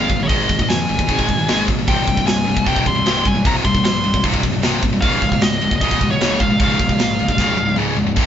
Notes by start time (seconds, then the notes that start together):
Already playing: F5
0.09 G#1 G#2 D#3, kick, crash
0.19 G#2 D#3 C#5
0.28 G#1 G#2 D#3 G#3 D#5, kick, crash
0.49 G#1 G#2 D#3, kick, crash
0.59 G#2 D#3, kick
0.69 F2 G#2 D#3 G#5, snare, crash
0.89 G#1 G#2 D#3, crash
0.99 G#2 D#3, kick
1.08 G#1 G#2 D#3 G#3, kick, crash
1.19 kick
1.28 G#1 G#2 D#3, kick, crash
1.39 G#2 D#3
1.48 G#1 G#2 D#3 G#3, snare, crash
1.68 G#1 G#2 D#3, kick, crash
1.79 G#2 D#3
1.88 C1 C2 G2 C3 G5, kick, crash
2.07 C1 C2 G2, kick, crash
2.17 C2 G2, kick
2.27 C1 C2 G2 G#5, snare, crash
2.47 C1 C2 G2, crash
2.57 C2 G2, kick
2.66 C1 C2 G2 C3 G5, kick, crash
2.76 kick
2.86 C1 C2 G2 C6, kick, crash
2.96 C2 G2
3.06 C1 C2 G2 C3, snare, crash
3.25 C1 C2 G2 G#5, kick, crash
3.35 C2 G2
3.45 C1 C2 G2 C3 A#5, kick, crash
3.64 C1 C2 G2 C6, kick, crash
3.75 C2 G2, kick
3.84 A#1 C2 G2 C6, snare, crash
4.03 C1 C2 G2, crash
4.14 C2 G2, kick
4.23 C1 C2 G2 C3, kick, crash
4.34 kick
4.43 C1 C2 G2, kick, crash
4.53 C2 G2
4.63 C1 C2 G2 C3, snare, crash
4.83 C1 C2 G2, kick, crash
4.93 C2 G2
5.01 C#1 C#2 G#2 C#3 F5, kick, crash
5.22 C#1 C#2 G#2, kick, crash
5.32 C#2 G#2, kick
5.41 C#1 C#2 G#2 D#5, snare, crash
5.61 C#1 C#2 G#2, crash
5.71 C#2 G#2, kick
5.81 C#1 C#2 G#2 C#3 D#5, kick, crash
5.91 kick
6.01 C#1 C#2 G#2, kick, crash
6.11 C#2 G#2 C#5
6.21 C#1 C#2 G#2 C#3, snare, crash
6.40 C#1 C#2 G#2 F5, kick, crash
6.50 C#2 G#2
6.60 C#1 C#2 G#2 C#3 F5, kick, crash
6.80 C#1 C#2 G#2, kick, crash
6.89 C#2 G#2, kick
6.99 A#1 C#2 G#2, snare, crash
7.19 C#1 C#2 G#2, crash
7.28 C#2 G#2, kick
7.38 C#1 C#2 G#2 C#3, kick, snare
7.57 C#1 C#2 G#2, high tom
7.68 C#2 G#2
7.76 C#1 C#2 G#2 C#3, mid tom
7.97 C#1 C#2 G#2, floor tom
8.07 C#2 G#2
8.16 C1 C2 G2 C3, kick, crash, china